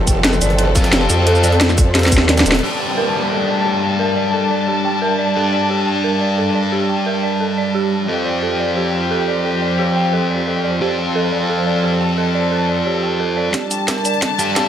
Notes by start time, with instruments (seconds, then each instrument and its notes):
Already playing: wobble bass F1, string section F3 C4 A4
0.07 synth bell G5, kick, closed hi-hat, shaker
0.24 synth bell A4, snare, closed hi-hat
0.33 snare, shaker
0.41 wobble bass G1, synth bell D5, closed hi-hat, shaker
0.50 closed hi-hat
0.58 synth bell A4, closed hi-hat
0.75 distorted electric guitar F3 C4 F4, synth bell D5, kick, snare, closed hi-hat, shaker
0.84 snare, closed hi-hat
0.93 wobble bass F1, synth bell G4, snare, closed hi-hat
1.01 snare
1.10 wobble bass F2, synth bell G5, closed hi-hat, shaker
1.27 synth bell A4, closed hi-hat
1.35 shaker
1.43 distorted electric guitar F3 C4 F4, synth bell D5, closed hi-hat, shaker
1.52 closed hi-hat
1.61 synth bell A4, snare, closed hi-hat
1.69 snare, shaker
1.78 synth bell D5, kick, closed hi-hat, open hi-hat, shaker
1.95 synth bell G4, snare, closed hi-hat
1.99 snare, closed hi-hat
2.03 wobble bass E2, snare, closed hi-hat, shaker
2.06 snare, closed hi-hat
2.12 synth bell G4, kick, closed hi-hat, shaker
2.18 snare
2.29 wobble bass D#2, synth bell D5, snare, closed hi-hat
2.37 snare, closed hi-hat, shaker
2.40 snare
2.46 wobble bass D#1, synth bell A4, snare, closed hi-hat, shaker
2.52 snare
2.54 snare, closed hi-hat
2.59 distorted electric guitar G3, snare, closed hi-hat
2.63 string section G3 D4 A5, distorted electric guitar D4 G4, synth bell G4, crash, downlifter
2.80 synth bell G5
2.97 synth bell A#4
3.14 synth bell D5
3.31 synth bell A4
3.48 synth bell D5
3.65 synth bell G4
3.82 synth bell G5
3.99 synth bell A#4
4.16 synth bell D5
4.33 synth bell A4
4.50 synth bell D5
4.68 synth bell G4
4.85 synth bell G5
5.02 synth bell A#4
5.19 synth bell D5
5.35 distorted electric guitar G3 D4 G4, synth bell A4
5.53 synth bell D5
5.70 synth bell G4
5.87 synth bell G5
6.04 synth bell A#4
6.21 synth bell D5
6.38 synth bell A4
6.55 synth bell D5
6.72 synth bell G4
6.89 synth bell G5
7.06 synth bell A#4
7.23 synth bell D5
7.40 synth bell A4
7.57 synth bell D5
7.74 synth bell G4
8.08 distorted electric guitar F3 C4 F4, string section F3 C4 G4, synth bell A4
8.26 synth bell D5
8.43 synth bell A4
8.60 synth bell D5
8.77 synth bell G4
8.94 synth bell G5
9.11 synth bell A4
9.28 synth bell D5
9.45 synth bell A4
9.62 synth bell D5
9.79 synth bell G4
9.96 synth bell G5
10.13 synth bell A4
10.30 synth bell D5
10.47 synth bell A4
10.64 synth bell D5
10.81 distorted electric guitar F3 C4 F4, synth bell G4, string section A4
10.98 synth bell G5
11.15 synth bell A4
11.32 synth bell D5
11.49 synth bell A4
11.66 synth bell D5
11.84 synth bell G4
12.01 synth bell G5
12.18 synth bell A4
12.35 synth bell D5
12.52 synth bell A4
12.69 synth bell D5
12.86 synth bell G4
13.03 synth bell G5
13.20 synth bell A4
13.37 synth bell D5
13.54 string section G3 D4 A5, synth bell G4, kick, snare, closed hi-hat, riser
13.71 synth bell G5, closed hi-hat, shaker
13.88 synth bell A#4, kick, snare, closed hi-hat
13.97 snare
14.05 synth bell D5, closed hi-hat, shaker
14.14 closed hi-hat
14.22 synth bell A4, kick, snare, closed hi-hat
14.39 distorted electric guitar G3 D4 G4, synth bell D5, closed hi-hat, shaker
14.56 synth bell G4, kick, snare, closed hi-hat
14.65 snare